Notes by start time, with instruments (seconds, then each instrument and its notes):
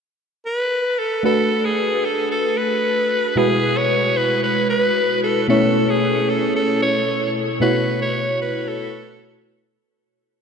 0.46 alto saxophone B4
0.99 alto saxophone A4
1.23 fm electric piano A3 D4 F#4 B4, alto saxophone A4
1.65 alto saxophone G#4
2.05 alto saxophone A4
2.31 alto saxophone A4
2.58 alto saxophone B4
3.36 fm electric piano B2 G#3 E4 F#4 B4, alto saxophone G#4
3.77 alto saxophone C#5
4.17 alto saxophone B4
4.43 alto saxophone B4
4.70 alto saxophone B4
5.23 alto saxophone A4
5.48 fm electric piano B2 A3 C#4 E4 C#5, alto saxophone A4
5.89 alto saxophone G#4
6.29 alto saxophone A4
6.56 alto saxophone A4
6.82 alto saxophone C#5
7.60 fm electric piano B2 A3 E4 F#4 C#5, alto saxophone B4
8.02 alto saxophone C#5
8.41 alto saxophone B4
8.68 alto saxophone A4